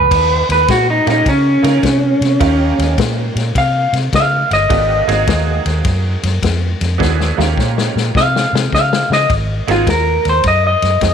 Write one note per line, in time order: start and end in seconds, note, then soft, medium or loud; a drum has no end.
0.00 0.49 B4 medium
0.11 0.41 D#2 loud
0.11 kick medium
0.11 snare soft
0.11 crash medium
0.11 ride medium
0.49 0.64 D#2 medium
0.49 0.69 B4 medium
0.49 snare soft
0.49 ride medium
0.68 0.99 A#2 medium
0.68 0.88 F#4 loud
0.68 kick medium
0.68 snare loud
0.68 ride medium
0.90 1.08 D#4 medium
1.06 1.22 A#2 medium
1.06 1.24 A#3 medium
1.06 1.24 C#4 medium
1.06 1.24 D#4 medium
1.06 1.24 F4 medium
1.06 1.24 G4 medium
1.06 snare soft
1.06 ride medium
1.10 1.27 D#4 medium
1.26 1.56 C#3 loud
1.26 2.96 C#4 medium
1.26 kick medium
1.26 snare soft
1.26 ride medium
1.63 1.79 C#3 medium
1.63 1.81 A#3 medium
1.63 1.81 C#4 medium
1.63 1.81 D#4 medium
1.63 1.81 F4 medium
1.63 1.81 A#4 medium
1.63 snare soft
1.63 ride medium
1.83 2.13 C3 medium
1.83 kick medium
1.83 snare medium
1.83 ride medium
2.21 2.36 C3 medium
2.21 snare soft
2.21 ride medium
2.40 2.71 D#2 loud
2.40 4.01 A#3 medium
2.40 4.01 C#4 medium
2.40 4.01 D#4 medium
2.40 4.01 F4 medium
2.40 4.02 G4 medium
2.40 kick loud
2.40 snare soft
2.40 ride loud
2.79 2.94 D#2 medium
2.79 snare soft
2.79 ride medium
2.98 3.28 A#2 medium
2.98 kick medium
2.98 snare loud
2.98 ride medium
3.35 3.51 A#2 medium
3.35 snare soft
3.35 ride medium
3.55 3.86 C3 loud
3.55 3.94 F5 loud
3.55 kick medium
3.55 snare soft
3.55 ride medium
3.93 4.08 C3 medium
3.93 snare soft
3.93 ride medium
4.13 4.43 C#3 medium
4.13 4.51 F5 medium
4.13 kick medium
4.13 snare medium
4.13 ride medium
4.51 4.66 G1 medium
4.51 5.64 D#5 loud
4.51 snare soft
4.51 ride medium
4.69 5.01 G#1 loud
4.69 5.04 A3 medium
4.69 5.04 B3 medium
4.69 5.04 D4 medium
4.69 5.05 F4 medium
4.69 5.05 G4 medium
4.69 kick medium
4.69 snare soft
4.69 ride medium
5.07 5.23 G#1 loud
5.07 6.30 A#3 medium
5.07 6.31 C4 medium
5.07 6.31 D#4 medium
5.07 6.31 F#4 medium
5.07 6.31 G#4 medium
5.07 snare soft
5.07 ride medium
5.27 5.58 D#2 medium
5.27 kick medium
5.27 snare loud
5.27 ride medium
5.66 5.81 D#2 medium
5.66 snare soft
5.66 ride medium
5.85 6.15 F#2 loud
5.85 kick medium
5.85 snare soft
5.85 ride medium
6.23 6.38 F#2 medium
6.23 snare soft
6.23 ride medium
6.42 6.73 F2 loud
6.42 kick medium
6.42 snare medium
6.42 ride medium
6.81 6.96 F2 loud
6.81 snare soft
6.81 ride medium
6.98 7.30 D#2 loud
6.98 7.33 B3 medium
6.98 7.34 D4 medium
6.98 7.34 E4 medium
6.98 7.34 F#4 medium
6.98 7.34 G#4 medium
6.98 kick medium
6.98 snare medium
7.20 snare medium
7.37 7.53 D#2 loud
7.37 8.60 A#3 medium
7.37 8.60 C#4 medium
7.37 8.60 D#4 medium
7.37 8.61 F4 medium
7.37 8.61 G4 medium
7.37 snare medium
7.57 7.87 A#2 loud
7.57 kick medium
7.57 snare medium
7.78 snare medium
7.96 8.11 A#2 medium
7.96 snare medium
8.15 8.45 C3 loud
8.15 8.53 F5 loud
8.15 kick medium
8.15 snare medium
8.36 snare medium
8.53 8.68 C3 medium
8.53 snare loud
8.72 9.02 C#3 medium
8.72 9.10 F5 medium
8.72 kick medium
8.72 snare medium
8.93 snare loud
9.10 9.25 C#3 medium
9.10 9.30 D#5 loud
9.10 snare medium
9.30 9.60 G#1 medium
9.30 kick loud
9.30 snare soft
9.30 ride medium
9.67 9.83 G#1 medium
9.67 9.85 A#3 medium
9.67 9.85 C4 medium
9.67 9.85 D#4 medium
9.67 9.88 F4 medium
9.67 9.85 F#4 medium
9.67 9.85 G#4 medium
9.67 snare soft
9.67 ride medium
9.87 10.17 D#2 medium
9.87 10.25 A#4 medium
9.87 kick medium
9.87 snare loud
9.87 ride medium
10.25 10.40 D#2 medium
10.25 snare soft
10.25 ride medium
10.29 10.46 C5 medium
10.44 10.74 F#2 loud
10.44 10.64 D#5 medium
10.44 kick medium
10.44 snare soft
10.44 ride medium
10.67 11.14 D#5 medium
10.82 10.97 F#2 medium
10.82 snare soft
10.82 ride medium
11.01 11.14 F2 loud
11.01 kick medium
11.01 snare medium
11.01 ride medium